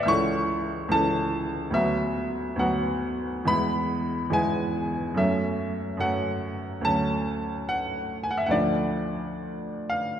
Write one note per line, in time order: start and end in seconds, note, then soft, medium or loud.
0.00 0.13 A2 soft
0.00 0.06 E3 soft
0.00 0.08 C#4 soft
0.00 0.09 A4 soft
0.00 0.12 D5 medium
0.00 0.03 E5 medium
0.00 0.11 E5 medium
0.00 0.12 F#5 medium
0.05 0.87 C#2 soft
0.05 0.88 E3 soft
0.05 0.89 C#4 soft
0.05 0.90 A4 soft
0.05 0.92 C#6 medium
0.89 1.72 C#2 soft
0.89 1.73 E3 soft
0.89 1.73 C#4 soft
0.89 1.74 A4 soft
0.89 1.76 A5 medium
1.70 2.54 D2 soft
1.70 2.56 F#3 soft
1.70 2.57 B3 soft
1.70 2.60 E5 medium
1.75 2.58 F#4 soft
2.56 3.45 D2 soft
2.56 3.46 F#3 soft
2.56 3.46 B3 soft
2.56 3.49 F#5 medium
2.60 3.47 F#4 soft
3.45 4.29 E2 soft
3.45 4.30 G#3 soft
3.45 4.31 B3 soft
3.45 4.31 E4 soft
3.45 4.33 B5 medium
4.30 5.14 E2 soft
4.30 5.15 G#3 soft
4.30 5.16 B3 soft
4.30 5.16 E4 soft
4.30 5.19 G#5 medium
5.14 5.96 F#2 soft
5.14 5.97 F#3 soft
5.14 5.98 A3 soft
5.14 5.99 C#4 soft
5.14 6.01 E5 medium
5.97 6.81 F#2 soft
5.97 6.81 F#3 soft
5.97 6.83 A3 soft
5.97 6.83 C#4 soft
5.97 6.86 F#5 medium
6.81 8.47 D2 soft
6.81 8.49 F#3 soft
6.81 8.49 A3 soft
6.81 7.69 A5 medium
6.85 8.50 C#4 soft
7.69 8.22 F#5 medium
8.23 8.31 G#5 medium
8.31 8.39 F#5 medium
8.38 8.46 E5 medium
8.46 10.20 D2 soft
8.46 10.20 F3 soft
8.46 8.55 F#5 medium
8.51 10.20 A3 soft
8.51 10.20 D4 soft
8.51 9.90 D5 medium
9.90 10.20 F5 medium